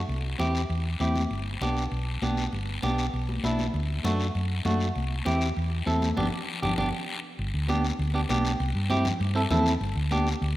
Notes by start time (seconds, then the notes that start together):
0.09 C2, high conga, long guiro
0.39 E2 C4 E4 G4, high conga, short guiro
0.55 short guiro
0.70 E2, high conga, long guiro
1.00 E2 C4 E4 G4, high conga, short guiro
1.16 high conga, short guiro
1.31 G1, high conga, long guiro
1.61 B1 B3 D4 G4, high conga, short guiro
1.77 short guiro
1.92 B1, high conga, long guiro
2.22 B1 B3 D4 G4, high conga, short guiro
2.37 short guiro
2.52 G1, high conga, long guiro
2.83 B1 B3 D4 G4, high conga, short guiro
2.98 short guiro
3.13 B1, high conga, long guiro
3.29 high conga
3.44 B1 B3 D4 E4, high conga, short guiro
3.59 high conga, short guiro
3.74 D2, high conga, long guiro
4.04 F#2 A3 D4 F#4, high conga, short guiro
4.20 short guiro
4.35 F#2, high conga, long guiro
4.65 F#2 A3 D4 F#4, high conga, short guiro
4.80 short guiro
4.96 C2, high conga, long guiro
5.25 E2 C4 E4 G4, high conga, short guiro
5.41 short guiro
5.56 E2, high conga, long guiro
5.86 E2 C4 E4 A4, high conga, short guiro
6.02 high conga, short guiro
6.17 G1 B3 D4 G4, low conga, long guiro
6.62 G1 B3 D4 G4, low conga, long guiro
6.78 G1 B3 D4 G4, low conga, long guiro
7.39 G1, long guiro
7.54 D2
7.68 B3 D4 G4, high conga, short guiro
7.84 short guiro
7.99 D2, long guiro
8.14 B3 D4 G4
8.29 B1 B3 D4 G4, high conga, short guiro
8.45 short guiro
8.60 C2, long guiro
8.75 G2
8.90 C4 E4 G4, high conga, short guiro
9.05 low conga, short guiro
9.20 G2, long guiro
9.35 C4 E4 A4
9.51 E2 C4 E4 A4, high conga, low conga, short guiro
9.66 short guiro
9.81 G1, long guiro
9.96 D2
10.11 B3 D4 G4, high conga, short guiro
10.27 short guiro
10.42 D2, long guiro